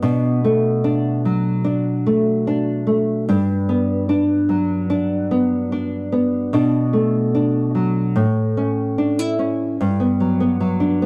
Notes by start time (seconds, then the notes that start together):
Already playing: F#3 B3
0.02 B2 D4
0.44 A3
0.84 D4
1.25 F#3
1.64 D4
2.06 A3
2.47 D4
2.87 A3
3.28 G2 D4
3.69 B3
4.09 D4
4.49 F#3
4.90 D4
5.31 B3
5.72 D4
6.12 B3
6.53 B2 D4
6.93 A3
7.35 D4
7.75 F#3
8.16 A2
8.57 C#4
8.98 D4
9.19 E4
9.39 C#4
9.81 G2
10.00 B3
10.20 F#3
10.40 B3
10.61 F#3
10.80 D4
11.02 B3